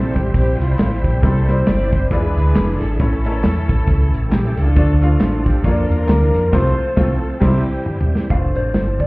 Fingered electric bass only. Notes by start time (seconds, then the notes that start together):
Already playing: A#1
0.16 A1
0.34 A#1
0.60 C2
0.79 A1
1.04 A#1
1.23 C2
1.67 G1
2.11 E2
2.37 D2
2.56 F1
2.81 G#1
3.00 A1
3.45 E2
3.69 A1
3.88 C#2
4.14 A1
4.32 A#1
4.58 C#2
4.77 D2
5.21 A1
5.64 F2
5.90 E2
6.09 D2
6.35 F2
6.53 C2
6.97 C2
7.42 C2
8.30 F1
8.56 A1
8.75 G1